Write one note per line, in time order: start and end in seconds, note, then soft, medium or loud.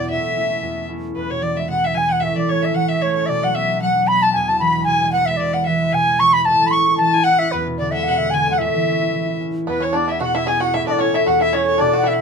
0.00 0.15 E2 medium
0.00 0.15 B2 medium
0.00 0.15 G#3 soft
0.00 2.94 B3 soft
0.00 0.42 D4 soft
0.00 0.36 E4 soft
0.00 0.10 D5 medium
0.10 0.68 A2 medium
0.10 0.85 E5 medium
0.10 0.86 E5 medium
0.35 0.88 A3 soft
0.35 0.89 C#4 soft
0.35 0.90 E4 soft
0.62 1.15 E2 medium
0.89 1.61 A3 soft
0.89 2.62 C#4 soft
0.89 3.51 E4 soft
1.16 2.27 E2 medium
1.16 1.32 B4 medium
1.16 1.33 B4 medium
1.30 1.67 B2 soft
1.30 1.44 C#5 medium
1.30 1.45 C#5 medium
1.41 1.74 E3 soft
1.41 1.58 D5 medium
1.41 1.53 D5 medium
1.53 1.82 G#3 soft
1.53 1.61 D5 medium
1.53 1.69 E5 medium
1.60 1.70 E5 medium
1.68 2.27 B2 soft
1.68 1.86 F#5 medium
1.68 1.88 F#5 medium
1.83 2.08 G#3 medium
1.83 1.96 E5 medium
1.83 1.99 E5 medium
1.95 2.27 E3 medium
1.95 2.11 G#5 medium
1.95 2.13 G#5 loud
2.09 2.27 G#3 soft
2.09 2.22 F#5 medium
2.09 2.24 F#5 medium
2.20 3.32 A2 medium
2.20 2.38 E5 medium
2.20 2.36 E5 medium
2.36 2.73 E3 soft
2.36 2.50 D5 medium
2.36 2.53 D5 medium
2.47 3.01 A3 medium
2.47 2.64 C#5 medium
2.51 2.66 C#5 medium
2.62 2.88 C#4 medium
2.62 2.76 E5 medium
2.62 2.77 E5 medium
2.74 3.32 E3 soft
2.74 2.90 F#5 medium
2.74 2.89 F#5 medium
2.88 3.15 C#4 medium
2.88 3.03 E5 medium
2.88 3.04 E5 medium
3.01 4.81 A3 medium
3.01 3.15 C#5 medium
3.01 3.27 C#5 loud
3.15 3.75 C#4 soft
3.15 3.29 C#5 medium
3.26 4.39 B2 medium
3.26 3.45 D5 medium
3.26 3.31 E5 medium
3.43 3.80 F#3 soft
3.43 3.56 F#5 medium
3.54 4.09 B3 medium
3.54 3.81 E5 medium
3.69 3.95 D4 soft
3.81 4.39 F#3 medium
3.81 4.06 F#5 medium
3.81 4.09 F#5 loud
3.96 4.22 D4 medium
4.08 7.20 B3 soft
4.08 4.24 B5 loud
4.08 4.25 B5 medium
4.22 6.79 D4 soft
4.22 4.32 A5 medium
4.22 4.38 A5 medium
4.33 6.51 E2 medium
4.33 4.49 G#5 medium
4.33 4.51 G#5 medium
4.48 4.86 B2 soft
4.48 4.59 A5 medium
4.48 4.63 A5 medium
4.59 4.92 E3 medium
4.59 4.83 B5 loud
4.59 4.86 B5 medium
4.75 5.00 G#3 medium
4.84 5.39 B2 medium
4.84 5.10 G#5 medium
4.84 5.11 G#5 medium
5.01 5.27 G#3 medium
5.12 5.45 E3 soft
5.12 5.27 F#5 loud
5.12 5.29 F#5 medium
5.26 5.80 G#3 soft
5.26 5.38 E5 medium
5.26 5.41 E5 medium
5.37 5.92 B2 medium
5.37 5.55 D5 medium
5.53 7.60 B4 soft
5.53 5.65 F#5 medium
5.53 5.68 F#5 medium
5.66 5.98 E3 soft
5.66 5.94 E5 medium
5.66 5.96 E5 medium
5.81 6.07 G#3 medium
5.93 6.51 B2 medium
5.93 6.22 G#5 medium
5.93 6.21 G#5 loud
6.09 6.33 G#3 medium
6.19 6.51 E3 medium
6.19 6.35 C#6 loud
6.19 6.33 C#6 medium
6.33 6.51 G#3 soft
6.33 6.47 B5 loud
6.33 6.45 B5 medium
6.45 7.58 A2 medium
6.45 6.68 A5 medium
6.45 6.69 A5 medium
6.61 6.99 E3 medium
6.66 6.73 B5 medium
6.66 6.74 B5 medium
6.71 7.27 C#4 medium
6.71 6.97 C#6 medium
6.71 6.99 C#6 medium
6.88 7.14 E4 soft
6.97 7.58 E3 medium
6.97 7.25 A5 loud
6.97 7.15 A5 medium
7.13 7.41 E4 medium
7.13 7.26 G#5 medium
7.24 7.40 F#5 loud
7.24 7.54 F#5 medium
7.39 9.01 E4 medium
7.39 7.53 E5 loud
7.51 8.65 E2 medium
7.51 7.66 B4 medium
7.51 7.67 B4 medium
7.67 7.85 B2 soft
7.78 8.11 D3 medium
7.78 7.92 D5 medium
7.78 7.90 D5 medium
7.91 8.19 G#3 soft
7.91 8.05 E5 medium
7.91 8.09 E5 medium
7.91 7.96 F#5 soft
8.03 8.38 B2 medium
8.03 8.20 F#5 medium
8.08 8.36 F#5 medium
8.18 8.38 G#3 medium
8.18 8.32 E5 medium
8.30 8.65 D3 medium
8.30 8.50 G#5 loud
8.34 8.55 G#5 medium
8.47 8.65 G#3 medium
8.47 8.60 F#5 medium
8.54 8.63 F#5 medium
8.58 9.72 A2 medium
8.58 9.39 E5 medium
8.58 9.41 E5 medium
8.74 9.13 E3 medium
8.87 9.40 C#4 medium
9.01 9.28 E4 medium
9.14 9.72 E3 soft
9.28 9.55 E4 medium
9.41 10.99 C#4 medium
9.56 9.94 E4 soft
9.67 10.78 E2 medium
9.67 9.80 B3 medium
9.67 9.86 B4 medium
9.67 9.84 B4 medium
9.80 9.93 C#4 medium
9.80 9.97 C#5 medium
9.85 9.98 C#5 medium
9.93 10.47 B3 soft
9.93 10.07 D4 medium
9.93 10.47 E4 soft
9.93 10.48 G#4 medium
9.93 10.11 D5 medium
9.97 10.13 D5 medium
10.08 10.19 E4 medium
10.08 10.21 E5 medium
10.08 10.23 E5 medium
10.20 10.78 B2 medium
10.20 10.34 F#4 medium
10.20 10.36 F#5 medium
10.20 10.39 F#5 medium
10.35 10.46 E4 medium
10.35 10.49 E5 medium
10.35 10.46 E5 medium
10.47 12.21 B3 soft
10.47 11.00 E4 soft
10.47 10.60 G#4 medium
10.47 10.79 G#4 soft
10.47 10.60 G#5 medium
10.47 10.61 G#5 medium
10.60 10.73 F#4 medium
10.60 10.75 F#5 medium
10.60 10.78 F#5 medium
10.73 11.32 A2 medium
10.73 10.87 E4 medium
10.73 10.87 E5 medium
10.73 10.88 E5 medium
10.87 10.99 D4 medium
10.87 11.02 D5 medium
10.99 11.13 C#4 medium
10.99 11.53 C#4 soft
10.99 11.53 E4 soft
10.99 11.54 A4 medium
10.99 11.16 C#5 medium
10.99 11.17 C#5 medium
11.14 11.26 E4 medium
11.14 11.29 E5 medium
11.14 11.26 E5 medium
11.26 11.85 E2 medium
11.26 11.40 F#4 medium
11.26 11.43 F#5 medium
11.26 11.41 F#5 medium
11.41 11.52 E4 medium
11.41 11.54 E5 medium
11.41 11.56 E5 medium
11.53 11.81 C#4 medium
11.53 12.13 C#4 soft
11.53 12.21 E4 soft
11.53 12.21 A4 soft
11.53 11.67 C#5 medium
11.53 11.83 C#5 medium
11.68 11.81 C#5 medium
11.78 12.21 B2 medium
11.78 11.92 D4 medium
11.78 12.08 D5 medium
11.78 11.95 D5 medium
11.93 12.03 F#4 medium
11.93 12.10 F#5 medium
12.04 12.21 D4 medium
12.04 12.21 E4 medium
12.04 12.21 F#4 soft
12.04 12.21 B4 medium
12.04 12.15 E5 medium
12.08 12.21 E5 medium
12.13 12.21 F#5 medium